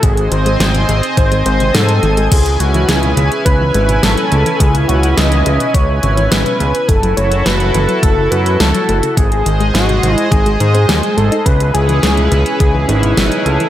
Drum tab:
CC |----------------|x---------------|----------------|----------------|
HH |xxxxxxxxxxxxxxxx|xxxxxxxxx-xxxxxx|xxxxxxxxx-xxxxxx|xxxxxxxxx-xxxxxx|
SD |----o-------o---|----o-------o---|----o-------o---|----o-------o---|
BD |o-------o-------|o-------o-------|o-------o-------|o-------o-------|

CC |----------------|----------------|
HH |xxxxxxxxxxxxxxxx|xxxxxxxxx-xxxxxx|
SD |----o-------o---|----o-------o---|
BD |o-------o-------|o-------o-------|